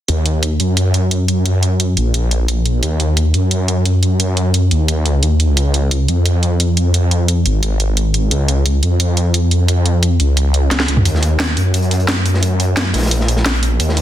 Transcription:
0.08 detuned saw bass D#2, closed hi-hat
0.26 closed hi-hat
0.43 closed hi-hat
0.60 detuned saw bass F#2, closed hi-hat
0.77 closed hi-hat
0.94 closed hi-hat
1.11 closed hi-hat
1.28 closed hi-hat
1.46 closed hi-hat
1.63 closed hi-hat
1.80 closed hi-hat
1.97 detuned saw bass A#1, closed hi-hat
2.14 closed hi-hat
2.31 closed hi-hat
2.48 closed hi-hat
2.66 closed hi-hat
2.83 detuned saw bass D#2, closed hi-hat
3.00 closed hi-hat
3.17 closed hi-hat
3.34 detuned saw bass F#2, closed hi-hat
3.51 closed hi-hat
3.68 closed hi-hat
3.85 closed hi-hat
4.03 closed hi-hat
4.20 closed hi-hat
4.37 closed hi-hat
4.54 closed hi-hat
4.71 detuned saw bass D#2, closed hi-hat
4.88 closed hi-hat
5.06 closed hi-hat
5.23 detuned saw bass D#2, closed hi-hat
5.40 closed hi-hat
5.57 detuned saw bass C#2, closed hi-hat
5.74 closed hi-hat
5.91 closed hi-hat
6.08 detuned saw bass F2, closed hi-hat
6.26 closed hi-hat
6.43 closed hi-hat
6.60 closed hi-hat
6.77 closed hi-hat
6.94 closed hi-hat
7.11 closed hi-hat
7.28 closed hi-hat
7.46 detuned saw bass G#1, closed hi-hat
7.63 closed hi-hat
7.80 closed hi-hat
7.97 closed hi-hat
8.14 closed hi-hat
8.31 detuned saw bass C#2, closed hi-hat
8.48 closed hi-hat
8.66 closed hi-hat
8.83 detuned saw bass F2, closed hi-hat
9.00 closed hi-hat
9.17 closed hi-hat
9.34 closed hi-hat
9.51 closed hi-hat
9.68 closed hi-hat
9.86 closed hi-hat
10.03 closed hi-hat
10.20 detuned saw bass C#2, closed hi-hat
10.37 closed hi-hat
10.54 closed hi-hat
10.71 detuned saw bass C#2, snare, closed hi-hat
10.80 snare
10.88 detuned saw bass C#2, closed hi-hat
10.97 mid tom
11.05 detuned saw bass D#2, closed hi-hat
11.15 snare
11.23 closed hi-hat
11.40 snare, closed hi-hat
11.57 detuned saw bass F#2, closed hi-hat
11.74 closed hi-hat
11.82 closed hi-hat
11.91 closed hi-hat
12.00 closed hi-hat
12.08 snare, closed hi-hat
12.26 closed hi-hat
12.34 snare
12.43 closed hi-hat
12.60 closed hi-hat
12.77 snare, closed hi-hat
12.94 detuned saw bass A#1, snare, closed hi-hat
12.98 snare, closed hi-hat
13.03 snare, closed hi-hat
13.06 snare, closed hi-hat
13.11 closed hi-hat
13.20 snare
13.28 closed hi-hat
13.37 snare
13.45 snare, closed hi-hat
13.55 closed hi-hat
13.63 closed hi-hat
13.80 detuned saw bass D#2, closed hi-hat
13.89 snare
13.97 closed hi-hat

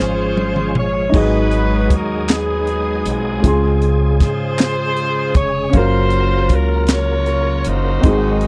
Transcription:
Already playing: upright bass G#1, upright piano F3 C#4 F4 G#4 C6, horn section F4 G#4 C5
0.00 tonewheel organ F3 G#3 C#4, snare
0.37 high tom
0.56 mid tom
0.75 horn section C#5, mid tom
1.09 upright piano F#3 D#4
1.14 upright bass G#1, upright piano G#2 G#4 D#5, tonewheel organ F#3 G#3 D#4 G#4, horn section D#4 F#4, kick, crash
1.18 horn section B4
1.51 closed hi-hat
1.90 upright bass D#2, kick, closed hi-hat
1.94 horn section A#4
2.28 horn section B3 D#4 G#4, snare, clap, closed hi-hat
2.67 closed hi-hat
3.05 upright bass B1, horn section C4 F4 G#4, closed hi-hat
3.40 tonewheel organ C#3 G#4, upright piano C#3 G#3 F4
3.44 upright bass C#2, upright piano G#4 C6, kick, closed hi-hat
3.82 closed hi-hat
4.20 upright bass G#2, horn section F4 G#4 C5, kick, snare, closed hi-hat
4.58 snare, clap, closed hi-hat
4.97 closed hi-hat
5.35 upright bass F1, horn section C#5, kick, closed hi-hat
5.70 upright bass F#1, upright piano C#4 F5, kick, closed hi-hat
5.74 upright piano F#3 A#4, tonewheel organ F#3 A#3 A#4, horn section F4 C5
6.10 closed hi-hat
6.49 upright bass C#2, kick, closed hi-hat
6.53 horn section A#4
6.87 snare, clap, closed hi-hat
6.92 horn section F4 A#4 C#5
7.26 closed hi-hat
7.64 upright bass F#1, horn section C5, closed hi-hat
7.69 horn section D#4 F#4
8.01 upright bass G#1, upright piano G#2 C4 D#4, tonewheel organ D#3 F#3 G#3 C4, kick, closed hi-hat
8.06 upright piano F#4 G#4
8.41 closed hi-hat

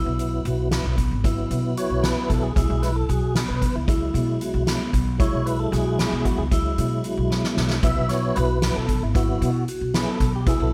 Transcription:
Already playing: tonewheel organ F#3 B3 E4, vibraphone E4
0.06 upright bass B1
0.19 closed hi-hat
0.45 upright bass B1, vibraphone F#4, closed hi-hat
0.71 tonewheel organ F#3 B3 E4, vibraphone B3, snare, closed hi-hat
0.85 upright bass B1
0.98 kick, closed hi-hat
1.11 upright bass G#1
1.23 tonewheel organ F#3 B3 E4, vibraphone E4, kick, closed hi-hat
1.51 upright bass B2, closed hi-hat
1.77 vibraphone F#4, tonewheel organ C#5, closed hi-hat
1.90 upright bass B1
2.03 vibraphone B3, tonewheel organ B4, snare, closed hi-hat
2.29 upright bass B1, tonewheel organ A4, kick, closed hi-hat
2.43 tonewheel organ G#4
2.56 upright bass B1, tonewheel organ F#3 G#3 E4, vibraphone E4, kick, closed hi-hat
2.70 upright bass B1
2.82 tonewheel organ B4, snare, closed hi-hat
2.96 tonewheel organ A4
3.09 upright bass B1, vibraphone F#4, tonewheel organ G#4, closed hi-hat
3.35 vibraphone B3, tonewheel organ G#4, snare, closed hi-hat
3.48 upright bass B1, tonewheel organ B4
3.62 kick, closed hi-hat
3.75 upright bass C#2, tonewheel organ E4
3.87 tonewheel organ F#3 G#3 E4, vibraphone E4, kick, closed hi-hat
4.14 upright bass B2, closed hi-hat
4.41 vibraphone F#4, closed hi-hat
4.54 upright bass B1
4.66 tonewheel organ F#3 G#3 E4, vibraphone B3, snare, closed hi-hat
4.93 upright bass B1, kick, closed hi-hat
5.18 tonewheel organ F#3 G#3 E4 C#5, vibraphone E4, kick, closed hi-hat
5.33 upright bass B1
5.46 tonewheel organ B4, closed hi-hat
5.59 tonewheel organ A4
5.72 upright bass B1, vibraphone F#4, tonewheel organ G#4, snare, closed hi-hat
5.99 vibraphone B3, snare, closed hi-hat
6.12 upright bass B1
6.25 tonewheel organ F#4, kick, closed hi-hat
6.38 upright bass C#2, tonewheel organ G#4
6.51 tonewheel organ F#3 G#3 E4, vibraphone E4, kick, closed hi-hat
6.78 upright bass B2, closed hi-hat
7.04 vibraphone F#4, closed hi-hat
7.17 upright bass B1
7.30 vibraphone B3, snare
7.44 snare
7.57 upright bass B1, snare
7.70 snare
7.83 upright bass B1, tonewheel organ F#3 B3 E4 E5, vibraphone E4, kick, closed hi-hat
7.97 upright bass B1
8.09 tonewheel organ C#5, snare, closed hi-hat
8.35 upright bass B1, vibraphone F#4, tonewheel organ B4, closed hi-hat
8.62 tonewheel organ F#3 B3 E4, vibraphone B3, snare, closed hi-hat
8.76 upright bass B1, tonewheel organ A4
8.88 kick, closed hi-hat
9.03 upright bass G#1, tonewheel organ E4
9.15 tonewheel organ F#3 B3 E4 F#4, vibraphone E4, kick, closed hi-hat
9.41 upright bass B2, closed hi-hat
9.68 vibraphone F#4, closed hi-hat
9.81 upright bass B1
9.94 tonewheel organ F#3 B3 E4 G#4, vibraphone B3, snare, closed hi-hat
10.08 tonewheel organ A4
10.20 upright bass B1, kick, snare, closed hi-hat
10.35 tonewheel organ G4
10.46 tonewheel organ F#3 B3 E4 G#4, vibraphone E4, kick, closed hi-hat
10.60 upright bass B1, tonewheel organ A4

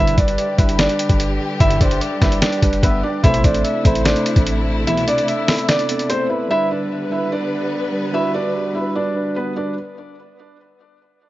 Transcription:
Already playing: 808-style bass G1, analog polysynth B1 G2 D3, string section D3 G3 G4, tine electric piano G3 D4, soft synth lead B4, felt piano E5
0.00 felt piano E4, tine electric piano B4
0.07 closed hi-hat
0.18 808-style bass G1, felt piano D4 D5, kick, closed hi-hat
0.28 closed hi-hat
0.38 soft synth lead D5, closed hi-hat
0.57 808-style bass G1, tine electric piano G3 D4 B4, felt piano E4 E5, soft synth lead B4, kick, closed hi-hat
0.69 closed hi-hat
0.79 felt piano D4 D5, snare, closed hi-hat
0.89 closed hi-hat
0.99 closed hi-hat
1.09 808-style bass G1, kick, closed hi-hat
1.20 closed hi-hat
1.60 808-style bass G1, analog polysynth B1 G2 D3, felt piano E4 E5, kick, closed hi-hat
1.71 closed hi-hat
1.81 808-style bass G1, felt piano D4 D5, soft synth lead C5, kick, closed hi-hat
1.91 closed hi-hat
2.01 soft synth lead D5, closed hi-hat
2.20 808-style bass G1, tine electric piano G3 D4 B4, felt piano E4 E5, kick, snare, closed hi-hat
2.32 closed hi-hat
2.42 felt piano D4 D5, snare, closed hi-hat
2.53 closed hi-hat
2.62 808-style bass F#1, tine electric piano G3 D4 B4, kick, closed hi-hat
2.73 closed hi-hat
2.83 808-style bass G1, felt piano B3 B4, soft synth lead E5, kick, closed hi-hat
3.03 felt piano D4 D5, soft synth lead D5
3.23 808-style bass A1, analog polysynth C2 B2 E3, string section C3 A3 E4, tine electric piano A3 C4 A4, felt piano E4 E5, soft synth lead C5, kick, closed hi-hat
3.34 closed hi-hat
3.44 808-style bass A1, felt piano D4 D5, kick, closed hi-hat
3.55 closed hi-hat
3.64 soft synth lead E5, closed hi-hat
3.83 808-style bass A1, tine electric piano A3 C4 A4, felt piano E4 E5, soft synth lead C5, kick, closed hi-hat
3.95 closed hi-hat
4.05 felt piano D4 D5, snare, closed hi-hat
4.16 closed hi-hat
4.26 closed hi-hat
4.36 808-style bass A1, kick, closed hi-hat
4.46 closed hi-hat
4.87 analog polysynth C2 B2 E3, felt piano E4 E5, closed hi-hat
4.97 closed hi-hat
5.07 felt piano D4 D5, soft synth lead D5, closed hi-hat
5.18 closed hi-hat
5.28 soft synth lead E5, closed hi-hat
5.47 tine electric piano B3 C4 A4, felt piano E4 E5, snare, open hi-hat
5.59 closed hi-hat
5.69 felt piano D4 D5, soft synth lead D5, snare, closed hi-hat
5.79 closed hi-hat
5.89 tine electric piano B3 C4 A4, closed hi-hat
5.99 closed hi-hat
6.10 felt piano C4 C5, soft synth lead C5, closed hi-hat
6.30 felt piano E4 E5, soft synth lead B4
6.49 string section D3 G3 B3 B4, tine electric piano G3 D4 B4, felt piano E4 E5
6.71 felt piano D4 D5
7.10 tine electric piano G3 D4 B4, felt piano E4 E5
7.32 felt piano D4 D5
7.92 tine electric piano G3 D4 B4
8.12 tine electric piano G3 D4 F#4, felt piano E4 E5
8.34 felt piano D4 D5
8.74 tine electric piano G3 D4 B4, felt piano E4 E5
8.95 felt piano D4 D5
9.15 tine electric piano G3 D4 B4
9.36 felt piano B3 B4
9.56 tine electric piano G3 D4 B4, felt piano D4 D5

